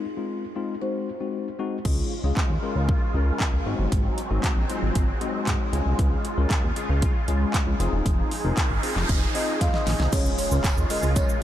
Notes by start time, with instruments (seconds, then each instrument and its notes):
Already playing: marimba D#4
0.17 tine electric piano G#3 C4 D#4 F4
0.55 tine electric piano G#3 C4 D#4 F4
0.81 tine electric piano G#3 C4 D#4 F#4, marimba C5
1.20 tine electric piano G#3 C4 D#4 F#4
1.59 tine electric piano G#3 C4 D#4 F#4
1.85 analog synth bass C#2, supersaw synth C#3 G#3 F4, tine electric piano G#3 C#4 F4 G#4, kick, crash
2.24 analog synth bass C#2, tine electric piano G#3 C#4 F4 G#4
2.37 kick, clap
2.50 analog synth bass D#2
2.62 tine electric piano G#3 C#4 F4 A#4
2.76 analog synth bass C#2
2.89 kick
3.14 analog synth bass C#2, tine electric piano G#3 C#4 F4 A#4
3.40 kick, clap
3.53 analog synth bass C#2
3.66 analog synth bass G#1, supersaw synth F#3 C4, tine electric piano G#3 C4 D#4 F#4
3.79 analog synth bass G1
3.92 analog synth bass G#1, kick, closed hi-hat
4.18 closed hi-hat
4.31 analog synth bass G#1, tine electric piano G#3 C4 D#4 F#4
4.44 kick, clap, closed hi-hat
4.57 analog synth bass A#1
4.69 tine electric piano G#3 C4 D#4 F4, closed hi-hat
4.83 analog synth bass G#1
4.95 analog synth bass G#1, kick, closed hi-hat
5.21 tine electric piano G#3 C4 D#4 F#4 D#5, closed hi-hat
5.47 analog synth bass G#2, tine electric piano F#5, kick, clap, closed hi-hat
5.73 analog synth bass C#2, supersaw synth C#3 F4, tine electric piano G#3 C#4 F4 G#4 G#5, closed hi-hat
5.86 analog synth bass C2
5.99 analog synth bass C#2, kick, closed hi-hat
6.25 closed hi-hat
6.37 analog synth bass C#2, tine electric piano G#3 C#4 F4 A#4
6.50 kick, clap, closed hi-hat
6.63 analog synth bass D#2
6.76 tine electric piano G#3 C#4 F4 G#4, closed hi-hat
6.89 analog synth bass C#2
7.02 kick, closed hi-hat
7.28 analog synth bass C#2, tine electric piano G#3 C#4 F4 G#4, closed hi-hat
7.54 kick, clap, closed hi-hat
7.67 analog synth bass C#2
7.80 analog synth bass F1, supersaw synth F3 D#4 G#4, tine electric piano C4 D#4 F4 G#4, closed hi-hat
7.93 analog synth bass E1
8.06 analog synth bass F1, kick, closed hi-hat, noise sweep
8.31 open hi-hat
8.44 analog synth bass F1, tine electric piano C4 D#4 F4 A#4
8.57 kick, clap, closed hi-hat
8.70 analog synth bass G#1
8.83 tine electric piano C4 D#4 F4 G#4, open hi-hat
8.96 analog synth bass F1, clap
9.09 analog synth bass F1, kick, closed hi-hat
9.35 tine electric piano C4 D#4 F4 G#4, marimba D#5, open hi-hat
9.61 analog synth bass F2, marimba F5, tine electric piano C6, kick, snare, closed hi-hat
9.74 marimba D#5, snare
9.87 analog synth bass A#1, tine electric piano G#5, snare, open hi-hat
10.00 analog synth bass C2, snare
10.12 analog synth bass C#2, tine electric piano G#3 C#4 F4 G#4 C#5, supersaw synth G#3, marimba C#5, kick, closed hi-hat, crash, tambourine, impact, shaker
10.26 shaker
10.38 marimba C#5, open hi-hat, tambourine, shaker
10.51 analog synth bass C#2, shaker
10.64 kick, clap, closed hi-hat, tambourine, shaker
10.77 analog synth bass D#2, shaker
10.90 tine electric piano G#3 C#4 F4 G#4 A#4, marimba D#5, open hi-hat, tambourine, shaker
11.03 analog synth bass C#2, shaker
11.16 marimba C#5, kick, closed hi-hat, tambourine, shaker
11.29 shaker